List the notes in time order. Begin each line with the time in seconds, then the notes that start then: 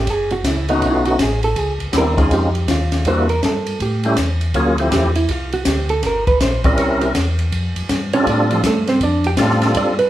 Already playing: G4
0.07 F#1 G#4, kick, ride
0.30 F#4, ride
0.44 C#2 E4, kick, snare, hi-hat pedal, ride
0.68 A3 B3 C#4 D#4 F#4, ride
0.82 B1, kick, ride
0.86 F4
1.05 F#4, ride
1.19 A1 G#4, kick, snare, hi-hat pedal, ride
1.43 A4, ride
1.56 C#2 G#4, kick, ride
1.80 C#2, ride
1.92 D#2 G3 B3 C4 D4 E4, kick, snare, hi-hat pedal, ride
1.98 A#4
2.16 G#3 C4 C#4 D#4 F4 G#4, kick, ride
2.31 F2 G4, kick, ride
2.55 ride
2.68 D#2 F4, kick, snare, hi-hat pedal, ride
2.92 snare, ride
3.05 E2 G3 A#3 D4 E4 F#4 C5, kick, ride
3.29 A#4, ride
3.42 G2 A4, kick, snare, hi-hat pedal, ride
3.66 ride
3.80 A2 G4, kick, ride
4.03 G3 A3 C#4 E4 G4, ride
4.17 E2, kick, snare, hi-hat pedal, ride
4.41 ride
4.54 D2 F#3 A#3 C#4 F4 G#4, kick, ride
4.78 F3 A3 C4 E4 G4, ride
4.91 E2 G4, kick, snare, hi-hat pedal, ride
5.15 E4, ride
5.29 C2 F4, kick, ride
5.52 F#4, ride
5.65 D2 G4, kick, snare, hi-hat pedal, ride
5.89 A4, ride
6.03 G1 A#4, kick, snare, ride
6.27 B4, kick, ride
6.41 A#1 C5, kick, snare, hi-hat pedal, ride
6.64 G3 C4 C#4 E4 A#4 D5, kick, ride
6.78 C2 C#5, kick, ride
7.01 G4, ride
7.15 E2, kick, snare, hi-hat pedal, ride
7.39 ride
7.52 F2, kick, ride
7.76 F2, ride
7.89 G2, kick, snare, hi-hat pedal, ride
8.13 G3 C4 C#4 D4 F4 A4 C#5, ride
8.26 A2 D4 D5, kick, ride
8.51 F3 F4, ride
8.63 G2 A3 A4, kick, snare, hi-hat pedal, ride
8.87 C4 C5, snare, ride
9.01 F2 D4 D5, kick, ride
9.24 G4 G5, ride
9.37 A2 G3 C4 D4 F4 A4, kick, snare, hi-hat pedal, ride
9.50 snare
9.62 snare, ride
9.74 G2 D5, kick, ride
9.99 B4, ride